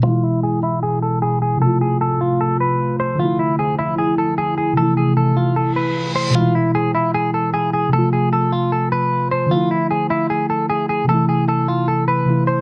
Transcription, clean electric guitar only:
X:1
M:4/4
L:1/8
Q:1/4=152
K:Ephr
V:1 name="Clean electric guitar"
F E ^G E G A G G | A ^G A F A B2 c | F E ^G E G A G G | A ^G A F A B2 c |
F E ^G E G A G G | A ^G A F A B2 c | F E ^G E G A G G | A ^G A F A B2 c |]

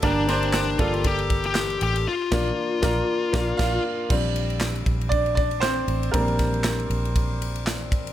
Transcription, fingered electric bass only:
X:1
M:4/4
L:1/8
Q:"Swing 16ths" 1/4=118
K:Gm
V:1 name="Fingered electric bass" clef=bass
G,,,3 G,,,4 A,,, | z B,,, z B,,, z B,,, B,,, z | B,,,3 B,,,4 A,,, | B,,,3 B,,,4- B,,, |]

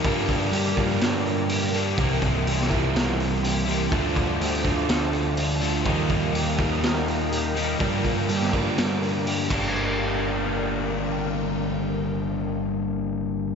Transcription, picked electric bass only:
X:1
M:4/4
L:1/8
Q:1/4=124
K:Gm
V:1 name="Picked electric bass" clef=bass
G,,2 G,,2 G,,4 | C,,2 C,,2 C,,4 | D,,2 D,,2 D,,4 | E,,2 E,,2 E,,4 |
G,,2 G,,2 G,,3 G,,,- | G,,,8- | G,,,8 |]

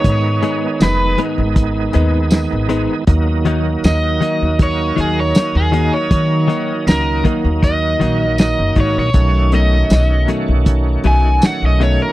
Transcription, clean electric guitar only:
X:1
M:4/4
L:1/8
Q:1/4=79
K:Ebm
V:1 name="Clean electric guitar" clef=bass
z [A,,A,CE] z [A,,A,CE] z [A,,A,CE] z [A,,A,CE] | z [E,G,B,E] z [E,G,B,E] z [E,G,B,E] z [E,G,B,E] | z [E,G,B,E] z [E,G,B,E] z [E,G,B,E] z [E,G,B,E] | z [=B,,^F,=A,^D] z [B,,F,A,D] z [B,,F,A,D] z [B,,F,A,D] |]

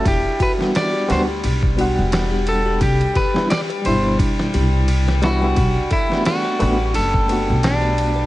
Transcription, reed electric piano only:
X:1
M:4/4
L:1/16
Q:"Swing 16ths" 1/4=87
K:Em
V:1 name="Reed electric piano"
z3 [G,B,DF]3 [G,B,DF] z3 [G,B,Df]6 | z3 [G,B,DE] z2 [B,,G,DE]8 [G,B,DE] [G,B,DE] | z3 [A,B,DF]3 [A,B,DF] z3 [A,B,DF]6 |]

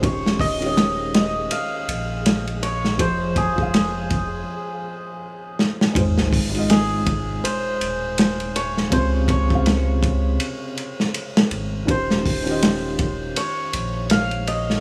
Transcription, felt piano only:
X:1
M:4/4
L:1/16
Q:"Swing 16ths" 1/4=81
K:Ab
V:1 name="Felt piano"
[E,DFGd]3 [E,DFGd]12- [E,DFGd] | [F,FAc]3 [F,FAf]4- [F,FAf] z8 | [A,EFc]3 [A,EFe]12- [A,EFe] | [C,D,Fc]3 [C,D,Ff]12- [C,D,Ff] |
[E,DFGc]3 [E,DFGe]12- [E,DFGe] |]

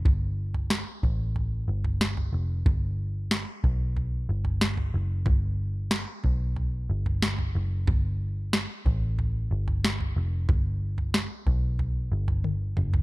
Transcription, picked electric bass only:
X:1
M:4/4
L:1/16
Q:1/4=92
K:G
V:1 name="Picked electric bass" clef=bass
G,,,4- G,,, z A,,,4 G,,,4 =F,,,2 | G,,,4- G,,, z B,,,4 G,,,4 F,,,2 | G,,,4- G,,, z B,,,4 G,,,4 F,,,2 | G,,,4- G,,, z A,,,4 G,,,4 =F,,,2 |
G,,,4- G,,, z B,,,4 G,,,4 F,,,2 |]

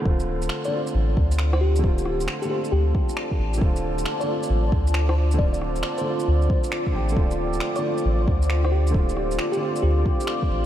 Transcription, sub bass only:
X:1
M:4/4
L:1/8
Q:"Swing 16ths" 1/4=135
K:Dm
V:1 name="Sub bass" clef=bass
D,,,2 z2 A,,, D,,3 | D,,,2 z2 D,, z2 A,,, | z4 A,,, D,,3 | D,,,2 z2 D,, z2 A,,, |
D,,,2 z2 A,,, D,,3 | D,,,2 z2 D,, z2 A,,, |]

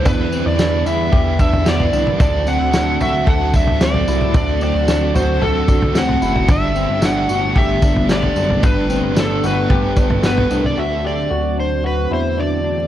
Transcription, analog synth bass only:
X:1
M:4/4
L:1/16
Q:1/4=112
K:Dmix
V:1 name="Analog synth bass" clef=bass
E,,3 E,,3 E,,2 E,,6 C,,2 | D,,3 D,,3 D,,2 D,,6 C,,2 | D,,3 D,,3 D,,2 D,,6 F,,,2 | G,,,3 G,,,3 G,,,2 G,,,6 F,,,2 |
G,,,3 G,,,3 G,,,2 G,,,6 C,,2 | D,,4 D,,6 E,,6 |]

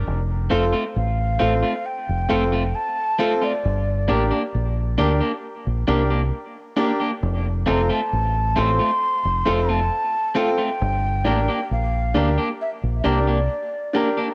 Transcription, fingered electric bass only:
X:1
M:4/4
L:1/16
Q:1/4=67
K:F
V:1 name="Fingered electric bass" clef=bass
F,,,2 F,,, z A,,,2 A,,, z2 F,,, F,,,2 z4 | G,,,2 A,,, z B,,,2 D,, z2 B,,, C,,2 z4 | F,,,2 F,,, z A,,,2 A,,, z2 F,,, F,,,2 z4 | G,,,2 A,,, z B,,,2 D,, z2 B,,, C,,2 z4 |]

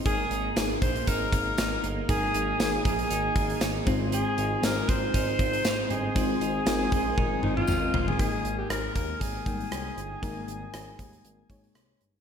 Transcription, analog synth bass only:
X:1
M:4/4
L:1/8
Q:"Swing 16ths" 1/4=118
K:Ebmix
V:1 name="Analog synth bass" clef=bass
A,,, A,,, A,,, B,,, A,,, A,,, A,,, G,,, | A,,, A,,, A,,, B,,, A,,, A,,, A,,, A,,,- | A,,, A,,, A,,, A,,, A,,, A,,, A,,, G,,, | A,,, A,,, A,,, B,,, A,,, A,,, A,,, G,,, |
A,,, A,,, A,,, E,, A,,, A,,, C,, G,,, | A,,, A,,, A,,, E,, A,,, A,,, C,, G,,, |]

